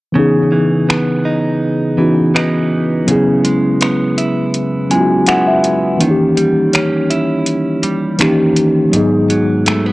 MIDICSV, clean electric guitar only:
0, 0, Header, 1, 2, 480
1, 0, Start_track
1, 0, Key_signature, 4, "minor"
1, 0, Tempo, 731707
1, 99, Time_signature, 4, 2, 24, 8
1, 6511, End_track
2, 0, Start_track
2, 0, Title_t, "Clean electric guitar"
2, 0, Program_c, 0, 27
2, 100, Note_on_c, 0, 49, 77
2, 340, Note_on_c, 0, 52, 61
2, 581, Note_on_c, 0, 59, 60
2, 820, Note_on_c, 0, 63, 66
2, 1297, Note_off_c, 0, 52, 0
2, 1300, Note_on_c, 0, 52, 57
2, 1537, Note_off_c, 0, 52, 0
2, 1540, Note_off_c, 0, 63, 0
2, 1540, Note_on_c, 0, 52, 61
2, 1541, Note_off_c, 0, 59, 0
2, 1544, Note_on_c, 0, 59, 64
2, 1548, Note_on_c, 0, 63, 67
2, 2013, Note_off_c, 0, 49, 0
2, 2020, Note_on_c, 0, 49, 76
2, 2075, Note_off_c, 0, 63, 0
2, 2258, Note_off_c, 0, 52, 0
2, 2260, Note_on_c, 0, 56, 63
2, 2498, Note_off_c, 0, 59, 0
2, 2500, Note_on_c, 0, 59, 64
2, 2741, Note_on_c, 0, 64, 65
2, 3213, Note_off_c, 0, 56, 0
2, 3221, Note_on_c, 0, 56, 57
2, 3453, Note_off_c, 0, 56, 0
2, 3457, Note_off_c, 0, 59, 0
2, 3461, Note_on_c, 0, 56, 63
2, 3465, Note_on_c, 0, 59, 60
2, 3466, Note_off_c, 0, 64, 0
2, 3468, Note_on_c, 0, 64, 71
2, 3937, Note_off_c, 0, 49, 0
2, 3940, Note_on_c, 0, 51, 74
2, 3992, Note_off_c, 0, 56, 0
2, 3994, Note_off_c, 0, 59, 0
2, 4179, Note_on_c, 0, 55, 63
2, 4419, Note_on_c, 0, 61, 63
2, 4657, Note_off_c, 0, 64, 0
2, 4660, Note_on_c, 0, 64, 66
2, 5130, Note_off_c, 0, 55, 0
2, 5138, Note_on_c, 0, 55, 61
2, 5377, Note_off_c, 0, 51, 0
2, 5380, Note_on_c, 0, 51, 79
2, 5431, Note_off_c, 0, 55, 0
2, 5431, Note_off_c, 0, 61, 0
2, 5431, Note_off_c, 0, 64, 0
2, 5858, Note_on_c, 0, 44, 77
2, 6099, Note_on_c, 0, 54, 60
2, 6340, Note_on_c, 0, 57, 61
2, 6359, Note_off_c, 0, 51, 0
2, 6468, Note_off_c, 0, 57, 0
2, 6468, Note_on_c, 0, 59, 52
2, 6511, Note_off_c, 0, 44, 0
2, 6511, Note_off_c, 0, 54, 0
2, 6511, Note_off_c, 0, 59, 0
2, 6511, End_track
0, 0, End_of_file